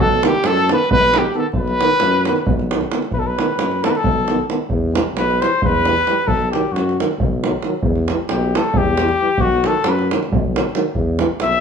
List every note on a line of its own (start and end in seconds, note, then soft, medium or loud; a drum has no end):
0.00 0.23 B1 medium
0.00 0.25 A4 loud
0.00 0.26 A4 medium
0.23 0.31 D#3 medium
0.23 0.32 B3 medium
0.23 0.50 G4 medium
0.23 0.48 G4 loud
0.23 davul high medium
0.33 davul high soft
0.44 0.70 F#2 medium
0.44 0.72 A4 loud
0.44 davul high medium
0.49 0.73 A4 medium
0.57 davul high soft
0.69 0.77 D#3 medium
0.69 0.79 B3 medium
0.69 davul high medium
0.73 0.92 B4 medium
0.73 0.91 B4 medium
0.90 1.26 B1 medium
0.90 1.20 B4 loud
0.90 1.18 B4 loud
0.90 davul low loud
1.14 1.22 D#3 medium
1.14 1.23 B3 medium
1.14 1.34 G4 medium
1.14 davul high medium
1.19 1.37 G4 medium
1.34 1.43 D#3 medium
1.34 1.43 B3 medium
1.34 1.44 A4 medium
1.34 1.47 A4 medium
1.53 1.80 B1 medium
1.53 2.69 B4 loud
1.53 davul low medium
1.58 2.70 B4 medium
1.68 davul high soft
1.81 1.90 D#3 medium
1.81 1.89 B3 soft
1.81 davul high medium
1.91 davul high soft
2.00 2.28 F#2 medium
2.00 davul high medium
2.13 davul high soft
2.25 2.36 D#3 medium
2.25 2.36 B3 medium
2.25 davul high medium
2.36 davul high soft
2.47 2.84 B1 medium
2.47 davul low loud
2.59 davul high soft
2.71 2.81 D#3 medium
2.71 2.81 B3 medium
2.71 davul high medium
2.81 davul high soft
2.92 3.00 D#3 medium
2.92 3.01 B3 soft
2.92 davul high medium
3.02 davul high soft
3.11 3.38 B1 medium
3.11 3.21 B4 medium
3.11 davul low medium
3.19 3.29 A4 medium
3.27 3.85 B4 medium
3.38 3.47 D#3 medium
3.38 3.48 B3 soft
3.38 davul high medium
3.58 3.84 F#2 medium
3.58 davul high medium
3.71 davul high soft
3.84 3.94 D#3 medium
3.84 3.94 B3 medium
3.84 3.92 A4 medium
3.84 davul high medium
3.90 3.98 B4 medium
3.95 4.49 A4 medium
3.95 davul high soft
4.04 4.40 B1 medium
4.04 davul low medium
4.28 4.37 D#3 medium
4.28 4.38 B3 medium
4.28 davul high medium
4.49 4.57 D#3 medium
4.49 4.58 B3 medium
4.49 davul high medium
4.69 4.95 E2 medium
4.69 davul low medium
4.93 5.04 E3 medium
4.93 5.02 G3 medium
4.93 davul high medium
5.15 5.41 B1 loud
5.15 5.43 B4 medium
5.15 davul high medium
5.31 davul high soft
5.40 5.50 E3 medium
5.40 5.49 G3 medium
5.40 5.63 C5 loud
5.40 davul high medium
5.52 davul high soft
5.62 5.98 E2 medium
5.62 6.29 B4 loud
5.62 davul low medium
5.85 5.95 E3 medium
5.85 5.93 G3 medium
5.85 davul high medium
6.07 6.16 E3 medium
6.07 6.16 G3 medium
6.07 davul high medium
6.25 6.51 B1 medium
6.25 6.51 A4 medium
6.25 davul low medium
6.52 6.62 D#3 medium
6.52 6.63 F#3 medium
6.52 6.74 G4 medium
6.52 davul high medium
6.72 6.98 F#2 medium
6.72 6.98 F#4 medium
6.76 davul high medium
6.89 davul high soft
7.00 7.08 D#3 medium
7.00 7.09 F#3 soft
7.00 davul high medium
7.11 davul high soft
7.18 7.54 B1 medium
7.18 davul low medium
7.42 7.50 D#3 soft
7.42 7.53 F#3 medium
7.42 davul high medium
7.63 7.72 D#3 medium
7.63 davul high medium
7.67 7.74 F#3 medium
7.83 8.08 E2 medium
7.83 davul low medium
7.96 davul high soft
8.08 8.18 E3 medium
8.08 davul high medium
8.12 8.20 G3 medium
8.29 8.56 B1 loud
8.29 8.58 G4 medium
8.29 davul high medium
8.54 8.62 E3 medium
8.54 8.65 G3 soft
8.54 8.79 A4 medium
8.54 davul high medium
8.64 davul high soft
8.74 9.12 E2 medium
8.74 9.42 G4 medium
8.74 davul low loud
8.97 9.08 E3 soft
8.97 davul high medium
9.03 9.10 G3 medium
9.09 davul high soft
9.21 9.29 E3 medium
9.21 9.30 G3 medium
9.38 9.64 B1 medium
9.38 9.68 F#4 medium
9.38 davul low medium
9.64 9.74 D#3 medium
9.64 9.74 F#3 soft
9.64 9.91 A4 medium
9.64 davul high medium
9.84 10.10 F#2 loud
9.84 davul high medium
9.90 10.13 B4 medium
9.99 davul high soft
10.11 10.20 D#3 medium
10.11 10.20 F#3 medium
10.11 davul high medium
10.23 davul high soft
10.31 10.66 B1 medium
10.31 davul low loud
10.54 10.62 D#3 medium
10.54 10.63 F#3 medium
10.54 davul high medium
10.75 10.83 D#3 medium
10.75 10.83 F#3 medium
10.75 davul high medium
10.94 11.20 E2 medium
10.94 davul low medium
11.19 11.28 E3 medium
11.19 11.28 G3 medium
11.19 davul high medium
11.40 11.60 B1 medium
11.40 11.60 E5 medium
11.40 davul high medium
11.52 davul high soft